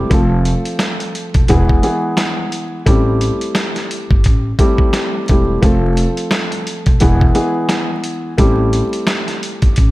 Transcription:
0.10 0.52 F1 loud
0.10 1.48 F3 medium
0.10 1.48 A3 medium
0.10 1.48 C4 medium
0.10 1.49 F4 medium
0.10 1.49 A4 loud
0.10 kick loud
0.10 closed hi-hat medium
0.45 closed hi-hat medium
0.65 closed hi-hat medium
0.79 snare loud
0.79 closed hi-hat medium
1.00 closed hi-hat medium
1.15 closed hi-hat medium
1.34 1.46 E1 medium
1.34 kick medium
1.34 closed hi-hat medium
1.48 1.76 E1 loud
1.48 1.81 E3 loud
1.48 1.81 G#3 medium
1.48 1.81 B3 medium
1.48 1.81 E4 medium
1.48 1.81 G#4 loud
1.48 kick medium
1.48 closed hi-hat medium
1.69 kick medium
1.82 2.79 E3 medium
1.82 2.80 G#3 medium
1.82 2.80 B3 medium
1.82 2.80 E4 medium
1.82 2.80 G#4 loud
1.82 closed hi-hat medium
2.17 snare loud
2.17 snare medium
2.17 closed hi-hat loud
2.52 closed hi-hat medium
2.86 3.28 A1 loud
2.86 4.47 G3 medium
2.86 4.47 A3 medium
2.86 4.48 C4 medium
2.86 4.48 E4 medium
2.86 4.48 G4 loud
2.86 kick loud
2.86 closed hi-hat medium
3.21 closed hi-hat medium
3.41 closed hi-hat medium
3.55 snare loud
3.55 closed hi-hat medium
3.76 snare soft
3.76 closed hi-hat medium
3.91 closed hi-hat medium
4.11 4.21 G1 medium
4.11 kick medium
4.24 4.52 A1 medium
4.24 kick medium
4.24 closed hi-hat medium
4.59 5.23 G3 loud
4.59 5.24 A3 medium
4.59 5.24 C4 medium
4.59 5.24 E4 medium
4.59 5.24 G4 loud
4.59 kick loud
4.59 closed hi-hat medium
4.78 kick loud
4.93 snare loud
4.93 snare medium
4.93 closed hi-hat loud
5.28 5.55 E1 loud
5.28 5.61 G3 medium
5.28 5.60 A3 medium
5.28 5.60 C4 medium
5.28 5.61 E4 medium
5.28 5.61 G4 medium
5.28 kick medium
5.28 closed hi-hat medium
5.61 6.04 F1 loud
5.61 7.00 F3 medium
5.61 7.00 A3 medium
5.61 7.00 C4 medium
5.61 7.00 F4 medium
5.61 7.01 A4 loud
5.61 kick loud
5.61 closed hi-hat medium
5.97 closed hi-hat medium
6.17 closed hi-hat medium
6.31 snare loud
6.31 closed hi-hat medium
6.52 closed hi-hat medium
6.67 closed hi-hat medium
6.86 6.97 E1 medium
6.86 kick medium
6.86 closed hi-hat medium
7.00 7.28 E1 loud
7.00 7.33 E3 loud
7.00 7.33 G#3 medium
7.00 7.33 B3 medium
7.00 7.33 E4 medium
7.00 7.33 G#4 loud
7.00 kick medium
7.00 closed hi-hat medium
7.21 kick medium
7.34 8.31 E3 medium
7.34 8.31 G#3 medium
7.34 8.32 B3 medium
7.34 8.32 E4 medium
7.34 8.32 G#4 loud
7.34 closed hi-hat medium
7.69 snare loud
7.69 snare medium
7.69 closed hi-hat loud
8.04 closed hi-hat medium
8.38 8.80 A1 loud
8.38 9.91 G3 loud
8.38 9.91 A3 medium
8.38 9.91 C4 medium
8.38 9.91 E4 medium
8.38 9.91 G4 loud
8.38 kick loud
8.38 closed hi-hat medium
8.73 closed hi-hat medium
8.93 closed hi-hat medium
9.07 snare loud
9.07 snare medium
9.07 closed hi-hat medium
9.28 snare soft
9.28 closed hi-hat medium
9.43 closed hi-hat medium
9.62 9.73 G1 medium
9.62 kick medium
9.62 closed hi-hat medium
9.76 9.91 A1 medium
9.76 kick medium
9.76 closed hi-hat medium

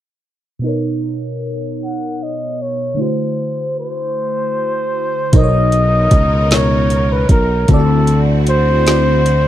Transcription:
0.59 2.92 B2 medium
0.59 2.94 B3 medium
0.64 2.95 D#4 medium
0.64 2.96 A#4 medium
0.68 2.97 C#5 medium
1.84 2.24 F#5 medium
2.23 2.63 D#5 medium
2.62 3.02 C#5 medium
2.94 5.28 D3 medium
2.94 5.29 A3 soft
2.99 5.30 E4 soft
2.99 5.31 F#4 soft
2.99 3.78 C5 medium
3.04 5.32 C5 medium
3.79 5.38 C5 medium
5.33 6.08 B1 loud
5.33 6.39 B2 medium
5.33 7.66 B3 medium
5.33 6.39 B3 medium
5.33 7.66 D#4 medium
5.33 6.40 D#4 medium
5.33 7.66 A#4 medium
5.33 6.40 A#4 medium
5.33 6.54 D#5 medium
5.33 kick loud
5.33 closed hi-hat medium
5.37 5.42 C5 medium
5.43 6.44 C#5 medium
5.72 closed hi-hat soft
6.11 7.26 C#2 medium
6.11 kick medium
6.11 closed hi-hat medium
6.51 7.57 B2 medium
6.51 7.57 B3 medium
6.51 7.58 D#4 medium
6.51 7.58 A#4 medium
6.51 7.14 C#5 medium
6.51 snare loud
6.51 closed hi-hat medium
6.56 7.59 C#5 medium
6.90 closed hi-hat medium
7.12 7.30 B4 medium
7.29 7.65 B1 medium
7.29 7.72 A#4 medium
7.29 kick medium
7.29 closed hi-hat medium
7.68 9.48 D2 loud
7.68 8.74 D3 medium
7.68 9.48 D3 medium
7.68 9.48 C4 medium
7.68 8.75 C4 medium
7.68 9.48 E4 medium
7.68 8.75 E4 medium
7.68 7.77 F4 medium
7.68 9.48 F#4 medium
7.68 8.21 A4 medium
7.68 kick loud
7.68 closed hi-hat medium
7.74 8.77 D5 medium
7.79 8.79 F#4 medium
8.07 closed hi-hat soft
8.47 9.48 C5 loud
8.47 closed hi-hat medium
8.86 9.48 D3 medium
8.86 9.48 C4 medium
8.86 9.48 E4 medium
8.86 9.48 F#4 medium
8.86 snare loud
8.86 closed hi-hat medium
8.91 9.48 D5 medium
9.26 closed hi-hat medium

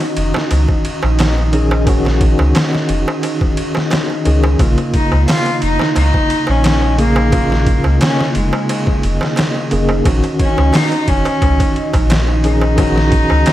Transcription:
0.00 1.49 D#3 medium
0.00 1.49 C#4 medium
0.00 4.58 D#4 medium
0.00 1.50 F#4 medium
0.00 4.59 D#5 medium
0.00 ride soft
0.00 darbuka tek soft
0.17 0.33 F1 medium
0.17 ride medium
0.34 snare medium
0.34 darbuka tek medium
0.51 0.67 C#2 loud
0.51 ride medium
0.51 darbuka tek medium
0.68 kick medium
0.68 darbuka tek soft
0.85 ride medium
1.03 2.36 A#1 loud
1.03 darbuka tek medium
1.19 snare loud
1.19 ride medium
1.19 darbuka tek medium
1.38 darbuka tek soft
1.52 1.83 D#3 medium
1.52 1.83 C#4 medium
1.52 1.84 G#4 medium
1.52 ride medium
1.71 darbuka tek medium
1.86 4.21 D#3 medium
1.86 4.22 C#4 medium
1.86 4.23 F#4 loud
1.86 kick loud
1.86 ride medium
1.86 darbuka tek medium
2.05 snare soft
2.05 darbuka tek soft
2.21 kick medium
2.21 ride medium
2.39 2.53 C#2 loud
2.39 darbuka tek medium
2.55 snare loud
2.55 ride medium
2.55 darbuka tek medium
2.73 snare medium
2.73 darbuka tek soft
2.89 3.05 F1 medium
2.89 ride medium
3.08 darbuka tek medium
3.23 ride medium
3.23 darbuka tek medium
3.41 kick medium
3.41 darbuka tek soft
3.57 ride medium
3.75 snare soft
3.75 darbuka tek medium
3.91 snare loud
3.91 ride medium
3.91 darbuka tek medium
4.10 darbuka tek soft
4.25 4.56 C#2 medium
4.25 4.56 D#3 medium
4.25 4.56 C#4 medium
4.25 4.57 G#4 medium
4.25 ride medium
4.44 darbuka tek medium
4.59 4.76 A#1 loud
4.59 6.94 C#3 medium
4.59 6.95 A#3 medium
4.59 13.53 D#4 medium
4.59 6.96 F4 medium
4.59 13.53 D#5 medium
4.59 kick loud
4.59 ride medium
4.59 darbuka tek medium
4.78 ride soft
4.78 darbuka tek soft
4.94 5.26 D#4 medium
4.94 kick medium
4.94 ride medium
5.12 5.26 C#2 loud
5.12 darbuka tek medium
5.28 5.60 F4 loud
5.28 snare loud
5.28 open hi-hat medium
5.28 darbuka tek medium
5.46 ride soft
5.46 darbuka tek soft
5.62 5.78 F1 medium
5.62 5.94 D#4 loud
5.62 ride medium
5.79 snare medium
5.79 darbuka tek medium
5.96 6.12 C#2 loud
5.96 6.51 D#4 loud
5.96 ride medium
5.96 darbuka tek medium
6.14 kick medium
6.14 darbuka tek soft
6.30 ride medium
6.47 7.81 A#1 loud
6.47 6.99 C#4 loud
6.47 darbuka tek medium
6.64 snare loud
6.64 ride medium
6.64 darbuka tek medium
6.81 darbuka tek soft
6.98 7.28 C#3 medium
6.98 7.29 A#3 medium
6.98 7.97 A#3 loud
6.98 7.29 G#4 medium
6.98 ride medium
7.16 darbuka tek medium
7.31 9.66 C#3 medium
7.31 9.67 A#3 medium
7.31 9.68 F4 medium
7.31 kick loud
7.31 ride medium
7.31 darbuka tek medium
7.50 snare soft
7.50 darbuka tek soft
7.67 kick loud
7.67 ride medium
7.84 7.99 C#2 loud
7.84 darbuka tek medium
8.01 8.33 C#4 loud
8.01 snare loud
8.01 ride medium
8.01 darbuka tek medium
8.20 snare medium
8.20 darbuka tek soft
8.35 8.51 F1 medium
8.35 9.34 G#3 medium
8.35 ride medium
8.53 darbuka tek medium
8.69 ride medium
8.69 darbuka tek medium
8.86 kick medium
8.86 darbuka tek soft
9.03 9.19 F1 loud
9.03 ride medium
9.21 snare soft
9.21 darbuka tek medium
9.36 snare loud
9.36 ride medium
9.36 darbuka tek medium
9.55 darbuka tek soft
9.71 10.02 F1 medium
9.71 10.01 C#3 medium
9.71 10.02 A#3 medium
9.71 10.02 G#4 medium
9.71 ride medium
9.89 darbuka tek medium
10.04 10.21 A#1 loud
10.04 12.39 D#3 medium
10.04 12.40 C#4 medium
10.04 12.41 F#4 medium
10.04 kick loud
10.04 ride medium
10.04 darbuka tek medium
10.23 ride soft
10.23 darbuka tek soft
10.39 10.76 C#4 loud
10.39 kick medium
10.39 ride medium
10.58 10.72 C#2 loud
10.58 darbuka tek medium
10.73 11.10 D#4 loud
10.73 snare loud
10.73 open hi-hat medium
10.73 darbuka tek medium
10.91 ride soft
10.91 darbuka tek soft
11.08 11.24 F1 medium
11.08 12.10 C#4 loud
11.08 kick medium
11.08 ride medium
11.25 ride soft
11.25 darbuka tek medium
11.42 11.58 C#2 loud
11.42 kick medium
11.42 ride medium
11.42 darbuka tek medium
11.60 kick medium
11.60 ride medium
11.60 darbuka tek soft
11.76 ride soft
11.93 13.27 A#1 loud
11.93 kick medium
11.93 ride medium
11.93 darbuka tek medium
12.10 snare loud
12.10 ride medium
12.10 darbuka tek medium
12.28 darbuka tek soft
12.44 12.74 D#3 medium
12.44 12.74 C#4 medium
12.44 13.53 D#4 loud
12.44 12.75 G#4 medium
12.44 ride medium
12.61 darbuka tek medium
12.76 13.53 D#3 medium
12.76 13.53 C#4 medium
12.76 13.53 F#4 loud
12.76 kick loud
12.76 ride medium
12.76 darbuka tek medium
12.96 snare soft
12.96 darbuka tek soft
13.12 kick loud
13.12 ride medium
13.30 13.45 C#2 loud
13.30 darbuka tek medium
13.46 snare loud
13.46 ride medium
13.46 darbuka tek medium

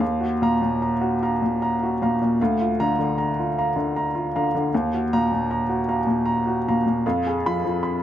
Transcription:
0.00 2.35 D#2 medium
0.00 0.32 F5 medium
0.21 0.53 F#4 medium
0.42 0.60 A#2 medium
0.42 0.59 F5 medium
0.42 0.60 A#5 medium
0.62 0.93 A#2 medium
0.82 1.13 A#5 medium
1.01 1.33 F#4 medium
1.23 1.40 F5 medium
1.23 1.40 A#5 medium
1.42 1.73 A#2 soft
1.62 1.93 A#5 medium
1.83 2.13 F#4 medium
2.02 2.20 A#2 medium
2.02 2.19 F5 soft
2.02 2.19 A#5 medium
2.22 2.40 A#2 medium
2.41 4.69 D2 medium
2.41 2.71 F5 medium
2.61 2.90 F4 soft
2.80 2.97 D3 soft
2.80 2.96 F5 soft
2.80 2.96 A#5 medium
2.99 3.29 D3 medium
3.18 3.48 A#5 medium
3.39 3.69 F4 soft
3.58 3.75 F5 soft
3.58 3.75 A#5 medium
3.76 4.07 D3 soft
3.96 4.27 A#5 medium
4.15 4.45 F4 medium
4.36 4.53 D3 medium
4.36 4.52 F5 medium
4.36 4.52 A#5 medium
4.55 4.73 D3 medium
4.74 7.01 D#2 medium
4.74 5.04 F5 medium
4.94 5.23 F#4 medium
5.13 5.31 A#2 medium
5.13 5.29 F5 medium
5.13 5.29 A#5 medium
5.32 5.62 A#2 medium
5.51 5.81 A#5 medium
5.69 6.00 F#4 medium
5.89 6.06 F5 medium
5.89 6.06 A#5 medium
6.07 6.38 A#2 medium
6.26 6.57 A#5 medium
6.47 6.77 F#4 medium
6.68 6.85 A#2 medium
6.68 6.84 F5 medium
6.68 6.84 A#5 medium
6.86 7.05 A#2 medium
7.06 8.03 F2 medium
7.06 7.36 F5 medium
7.27 7.56 G#4 medium
7.46 7.63 F3 medium
7.46 7.62 F5 medium
7.46 7.62 B5 medium
7.65 7.94 F3 medium
7.83 8.03 B5 medium

